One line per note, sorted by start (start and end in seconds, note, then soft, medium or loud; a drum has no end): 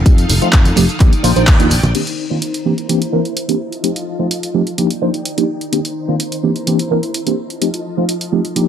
0.00 1.93 D#4 medium
0.00 0.99 A4 medium
0.00 0.99 F5 medium
0.05 0.23 F2 loud
0.05 0.12 F3 medium
0.05 0.12 A3 medium
0.05 0.12 C4 medium
0.05 0.12 D#4 medium
0.05 0.12 G4 medium
0.05 kick loud
0.05 closed hi-hat medium
0.05 tambourine soft
0.05 maracas soft
0.18 closed hi-hat medium
0.18 tambourine soft
0.29 0.38 F1 medium
0.29 open hi-hat loud
0.29 tambourine medium
0.29 low conga medium
0.29 maracas loud
0.41 0.47 F3 medium
0.41 0.47 A3 medium
0.41 0.47 C4 medium
0.41 0.47 D#4 medium
0.41 0.47 F4 medium
0.41 muted fingered electric bass stroke soft
0.41 closed hi-hat soft
0.41 tambourine soft
0.41 maracas medium
0.53 0.71 F2 loud
0.53 kick loud
0.53 clap loud
0.53 closed hi-hat medium
0.53 tambourine soft
0.65 closed hi-hat medium
0.65 tambourine soft
0.65 high conga medium
0.76 0.85 F1 medium
0.76 0.83 F3 medium
0.76 0.83 A3 medium
0.76 0.83 C4 medium
0.76 0.83 D#4 medium
0.76 0.83 G4 loud
0.76 open hi-hat medium
0.76 tambourine medium
0.76 low conga medium
0.76 maracas loud
0.89 closed hi-hat soft
0.89 tambourine soft
0.89 maracas medium
1.00 1.09 D#2 loud
1.00 1.10 F3 medium
1.00 1.10 A#3 medium
1.00 1.10 D4 medium
1.00 1.10 D#4 medium
1.00 1.10 G4 loud
1.00 1.94 D5 medium
1.00 1.94 G5 medium
1.00 kick loud
1.00 clap soft
1.00 closed hi-hat medium
1.00 tambourine soft
1.00 maracas soft
1.12 muted fingered electric bass stroke soft
1.12 closed hi-hat medium
1.12 tambourine soft
1.23 1.33 A#1 medium
1.23 1.30 F3 loud
1.23 1.30 A#3 medium
1.23 1.30 D4 medium
1.23 1.30 D#4 medium
1.23 1.30 F4 loud
1.23 open hi-hat loud
1.23 tambourine medium
1.23 high conga medium
1.23 maracas loud
1.36 1.44 A#1 medium
1.36 1.42 F3 medium
1.36 1.42 A#3 medium
1.36 1.42 D4 medium
1.36 1.42 D#4 medium
1.36 1.42 C5 medium
1.36 closed hi-hat soft
1.36 tambourine soft
1.36 maracas medium
1.47 1.72 D#2 medium
1.47 kick loud
1.47 clap loud
1.47 closed hi-hat medium
1.47 tambourine soft
1.47 maracas soft
1.59 1.65 F3 medium
1.59 1.65 A#3 medium
1.59 1.65 D4 medium
1.59 1.66 D#4 medium
1.59 1.66 F4 medium
1.59 closed hi-hat medium
1.59 tambourine soft
1.70 1.80 A#1 medium
1.70 open hi-hat medium
1.70 tambourine medium
1.70 maracas loud
1.83 1.92 A#1 medium
1.83 closed hi-hat soft
1.83 tambourine soft
1.83 high conga medium
1.83 maracas medium
1.94 2.01 D#3 medium
1.94 2.01 A#3 medium
1.94 2.01 C4 medium
1.94 2.01 D4 medium
1.94 2.65 D#4 medium
1.94 2.01 G4 medium
1.94 2.64 C5 medium
1.94 3.58 A#5 medium
1.94 closed hi-hat medium
1.94 crash medium
2.07 closed hi-hat medium
2.30 2.36 D#3 medium
2.30 2.36 A#3 medium
2.30 2.36 C4 medium
2.30 2.36 D4 medium
2.30 2.36 F4 medium
2.42 closed hi-hat medium
2.54 closed hi-hat medium
2.65 2.71 E3 medium
2.65 2.72 A#3 medium
2.65 2.72 C4 medium
2.65 2.72 D4 medium
2.65 3.59 E4 medium
2.65 2.72 G4 medium
2.65 3.59 C5 medium
2.78 closed hi-hat soft
2.89 2.99 E3 medium
2.89 2.99 A#3 medium
2.89 2.99 C4 medium
2.89 2.99 D4 medium
2.89 2.99 G4 medium
2.89 closed hi-hat medium
3.02 closed hi-hat soft
3.12 3.19 E3 medium
3.12 3.19 A#3 medium
3.12 3.19 C4 medium
3.12 3.19 D4 medium
3.12 3.19 A#4 loud
3.25 closed hi-hat soft
3.37 closed hi-hat medium
3.48 3.54 E3 medium
3.48 3.54 A#3 medium
3.48 3.54 C4 medium
3.48 3.54 D4 medium
3.48 3.54 G4 medium
3.48 closed hi-hat medium
3.60 4.77 F4 medium
3.60 4.77 D#5 medium
3.60 4.77 A5 medium
3.72 closed hi-hat soft
3.83 3.89 F3 medium
3.83 3.90 A3 medium
3.83 3.90 C4 medium
3.83 3.90 D#4 medium
3.83 3.90 G4 medium
3.83 closed hi-hat medium
3.96 closed hi-hat medium
4.19 4.25 F3 medium
4.19 4.25 A3 medium
4.19 4.25 C4 medium
4.19 4.25 D#4 medium
4.19 4.25 F4 medium
4.31 closed hi-hat medium
4.43 closed hi-hat medium
4.54 4.60 F3 medium
4.54 4.60 A3 medium
4.54 4.61 C4 medium
4.54 4.61 D#4 medium
4.54 4.61 G4 medium
4.67 closed hi-hat soft
4.78 4.88 F3 medium
4.78 4.88 A#3 medium
4.78 4.88 D4 medium
4.78 4.88 D#4 medium
4.78 6.42 D#4 medium
4.78 4.88 G4 medium
4.78 5.72 D5 medium
4.78 5.72 G5 medium
4.78 closed hi-hat medium
4.90 closed hi-hat medium
5.01 5.08 F3 medium
5.01 5.08 A#3 medium
5.01 5.08 D4 medium
5.01 5.08 D#4 medium
5.01 5.08 C5 loud
5.14 closed hi-hat soft
5.25 closed hi-hat medium
5.37 5.43 F3 medium
5.37 5.43 A#3 medium
5.37 5.43 D4 medium
5.37 5.43 D#4 medium
5.37 5.43 G4 medium
5.37 closed hi-hat medium
5.61 closed hi-hat soft
5.72 5.79 D#3 medium
5.72 5.79 A#3 medium
5.72 5.79 C4 medium
5.72 5.79 D4 medium
5.72 5.79 G4 medium
5.72 7.36 C5 medium
5.72 7.36 A#5 medium
5.72 closed hi-hat medium
5.85 closed hi-hat soft
6.08 6.14 D#3 medium
6.08 6.14 A#3 medium
6.08 6.14 C4 medium
6.08 6.14 D4 medium
6.08 6.14 F4 medium
6.20 closed hi-hat medium
6.32 closed hi-hat soft
6.43 6.49 E3 medium
6.43 6.49 A#3 medium
6.43 6.50 C4 medium
6.43 6.50 D4 medium
6.43 7.37 E4 medium
6.43 6.50 G4 medium
6.56 closed hi-hat soft
6.67 6.77 E3 medium
6.67 6.77 A#3 medium
6.67 6.77 C4 medium
6.67 6.77 D4 medium
6.67 6.77 G4 medium
6.67 closed hi-hat medium
6.79 closed hi-hat soft
6.90 6.97 E3 medium
6.90 6.97 A#3 medium
6.90 6.97 C4 medium
6.90 6.97 D4 medium
6.90 6.97 A#4 loud
7.03 closed hi-hat soft
7.14 closed hi-hat medium
7.26 7.32 E3 medium
7.26 7.32 A#3 medium
7.26 7.32 C4 medium
7.26 7.32 D4 medium
7.26 7.32 G4 medium
7.26 closed hi-hat soft
7.38 8.55 F4 medium
7.38 8.55 D#5 medium
7.38 8.55 A5 medium
7.50 closed hi-hat soft
7.61 7.67 F3 medium
7.61 7.68 A3 medium
7.61 7.68 C4 medium
7.61 7.68 D#4 medium
7.61 7.68 G4 medium
7.61 closed hi-hat medium
7.74 closed hi-hat soft
7.97 8.03 F3 medium
7.97 8.03 A3 medium
7.97 8.03 C4 medium
7.97 8.03 D#4 medium
7.97 8.03 F4 medium
8.09 closed hi-hat medium
8.21 closed hi-hat soft
8.32 8.38 F3 medium
8.32 8.38 A3 medium
8.32 8.39 C4 medium
8.32 8.39 D#4 medium
8.32 8.39 G4 medium
8.45 closed hi-hat soft
8.55 8.66 F3 medium
8.55 8.66 A#3 medium
8.55 8.66 D4 medium
8.55 8.66 D#4 medium
8.55 8.68 D#4 medium
8.55 8.66 G4 medium
8.55 8.68 D5 medium
8.55 8.68 G5 medium
8.55 closed hi-hat medium